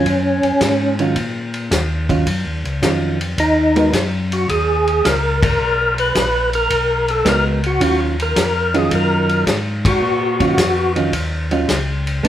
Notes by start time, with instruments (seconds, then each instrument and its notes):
Already playing: tonewheel organ C#4
0.05 tonewheel organ F#2, kick, ride
0.43 tonewheel organ F#2, ride
0.61 tonewheel organ G#2, kick, snare, hi-hat pedal, ride
0.99 hollow-body jazz guitar D#3 F#3 C#4 F4, ride
1.16 tonewheel organ A#2, kick, ride
1.54 ride
1.71 tonewheel organ D#2, kick, snare, hi-hat pedal, ride
2.09 hollow-body jazz guitar D#3 F#3 C#4 F4, kick, ride
2.26 tonewheel organ F#2, kick, ride
2.46 tonewheel organ D#2
2.64 tonewheel organ C#2, ride
2.82 tonewheel organ F2, hollow-body jazz guitar D#3 F#3 C#4 F4, kick, snare, hi-hat pedal, ride
3.21 ride
3.38 tonewheel organ D#2 D#4, kick, ride
3.76 hollow-body jazz guitar G#3 B3 F#4 A#4, ride
3.93 tonewheel organ F#2, kick, snare, hi-hat pedal, ride
4.32 tonewheel organ F#4, ride
4.48 tonewheel organ D#2 G#4, kick, ride
4.87 ride
5.04 tonewheel organ C#2 A#4, kick, snare, hi-hat pedal, ride
5.43 tonewheel organ A#4, kick, ride
5.58 tonewheel organ B1
5.98 tonewheel organ B4, ride
6.15 tonewheel organ A#1, kick, snare, hi-hat pedal, ride
6.53 tonewheel organ A#4, ride
6.70 tonewheel organ B1, kick, ride
7.08 tonewheel organ A4, ride
7.25 tonewheel organ C#2 A#4, hollow-body jazz guitar G#3 B3 F#4 A#4, kick, snare, hi-hat pedal, ride
7.64 tonewheel organ F#4, ride
7.80 tonewheel organ D#2 F#4, hollow-body jazz guitar D#3 F#3 C#4 F4, kick, ride
8.20 tonewheel organ A#4, ride
8.36 tonewheel organ F2, kick, snare, hi-hat pedal, ride
8.74 hollow-body jazz guitar D#3 F#3 C#4 F4, tonewheel organ G#4, ride
8.91 tonewheel organ F#2, kick, ride
8.95 tonewheel organ A#4
9.29 ride
9.47 tonewheel organ G#2, kick, snare, hi-hat pedal, ride
9.85 tonewheel organ F#4, kick, ride
10.02 tonewheel organ A#2
10.40 hollow-body jazz guitar D#3 F#3 C#4 F4, kick, ride
10.58 tonewheel organ F2, kick, snare, hi-hat pedal, ride
10.96 hollow-body jazz guitar D#3 F#3 C#4 F4, ride
11.13 tonewheel organ D#2, kick, ride
11.51 hollow-body jazz guitar D#3 F#3 C#4 F4, ride
11.68 tonewheel organ C#2, kick, snare, hi-hat pedal, ride
12.07 ride
12.23 tonewheel organ A#1 D4, hollow-body jazz guitar G#3 B3 D4, kick, ride